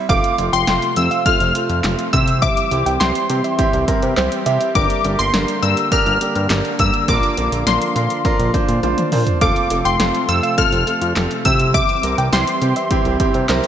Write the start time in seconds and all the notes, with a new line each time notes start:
0.09 F1 C3 F3 A3 C4 F4 F5 D6, kick, closed hi-hat
0.24 closed hi-hat
0.38 F1 A3 C4 F4, closed hi-hat
0.53 F1 G5 C6, closed hi-hat
0.67 F1 A3 C4 F4 G5, snare, closed hi-hat
0.82 closed hi-hat
0.96 F2 A3 C4 F4 E6, closed hi-hat
1.11 F5, closed hi-hat
1.26 A3 C4 F4 F6, kick, closed hi-hat
1.40 F1, closed hi-hat
1.55 A3 C4 F4, closed hi-hat
1.69 F2, closed hi-hat
1.84 F1 A3 C4 F4, snare, clap, closed hi-hat
1.99 closed hi-hat
2.13 C3 E3 G3 C4 E4 G4 E6, kick, closed hi-hat
2.28 closed hi-hat
2.42 E5 D6, kick, closed hi-hat
2.57 closed hi-hat
2.71 C2 C4 E4 G4, closed hi-hat
2.86 C2 G5, closed hi-hat
3.00 C2 C4 E4 G4 G5 C6, snare, closed hi-hat
3.15 closed hi-hat
3.30 C3 C4 E4 G4, closed hi-hat
3.44 E5, closed hi-hat
3.59 C4 E4 G4, kick, closed hi-hat
3.73 C2, closed hi-hat
3.88 C4 E4 A#4, kick, closed hi-hat
4.02 C3, closed hi-hat
4.17 C2 C4 E4 G4 C5, snare, clap, closed hi-hat
4.32 closed hi-hat
4.46 C3 C4 E4 G4 E5, closed hi-hat
4.61 closed hi-hat
4.75 G1 D3 A#3 D4 G4 A#4 D6, kick, closed hi-hat
4.90 closed hi-hat
5.04 G1 D4 G4 A#4, closed hi-hat
5.19 G1 C6, closed hi-hat
5.34 G1 D4 G4 A#4, snare, closed hi-hat
5.48 closed hi-hat
5.63 G2 D4 G4 A#4 E6, closed hi-hat
5.77 closed hi-hat
5.92 D4 G4 A#4 F6, kick, closed hi-hat
6.06 G1, closed hi-hat
6.21 D4 G4 A#4, closed hi-hat
6.35 G2, closed hi-hat
6.50 G1 D4 G4 A#4, snare, clap, closed hi-hat
6.65 closed hi-hat
6.79 G2 D4 G4 A#4 E6, kick, closed hi-hat
6.94 closed hi-hat
7.08 A#1 F3 D4 F4 A#4 D6, kick, closed hi-hat
7.23 closed hi-hat
7.37 A#1 D4 F4 A#4, closed hi-hat
7.52 A#1, closed hi-hat
7.67 A#1 D4 F4 A#4 C6, snare, closed hi-hat
7.82 closed hi-hat
7.96 A#2 D4 F4 A#4, closed hi-hat
8.10 closed hi-hat
8.25 D4 F4 A#4, kick, closed hi-hat
8.39 A#1, closed hi-hat
8.54 D4 F4 C5, kick, closed hi-hat
8.69 A#2, closed hi-hat
8.83 A#1 D4 F4 C5, closed hi-hat, high tom
8.98 closed hi-hat, mid tom
9.12 A#2 D4 F4 C5, mid tom, open hi-hat
9.27 closed hi-hat, floor tom
9.41 F1 C3 A3 C4 F4 A4 F5 D6, kick, closed hi-hat
9.56 closed hi-hat
9.70 F1 C4 F4 A4, closed hi-hat
9.85 F1 G5 C6, closed hi-hat
9.99 F1 C4 F4 A4 G5, snare, closed hi-hat
10.14 closed hi-hat
10.29 F2 C4 F4 A4 E6, closed hi-hat
10.43 F5, closed hi-hat
10.58 C4 F4 A4 F6, kick, closed hi-hat
10.72 F1, closed hi-hat
10.87 C4 F4 A4, closed hi-hat
11.02 F2, closed hi-hat
11.16 F1 C4 F4 A4, snare, clap, closed hi-hat
11.31 closed hi-hat
11.45 C3 E3 G3 C4 E4 G4 E6, kick, closed hi-hat
11.60 closed hi-hat
11.74 E5 D6, kick, closed hi-hat
11.89 closed hi-hat
12.03 C2 C4 E4 A#4, closed hi-hat
12.18 C2 G5, closed hi-hat
12.33 C2 C4 E4 G4 G5 C6, snare, closed hi-hat
12.47 closed hi-hat
12.62 C3 C4 E4 G4, closed hi-hat
12.76 E5, closed hi-hat
12.91 C4 E4 G4, kick, closed hi-hat
13.05 C2, closed hi-hat
13.20 C4 E4 G4, kick, closed hi-hat
13.34 C3, closed hi-hat
13.49 C2 C4 E4 A#4 C5, snare, clap, closed hi-hat
13.64 closed hi-hat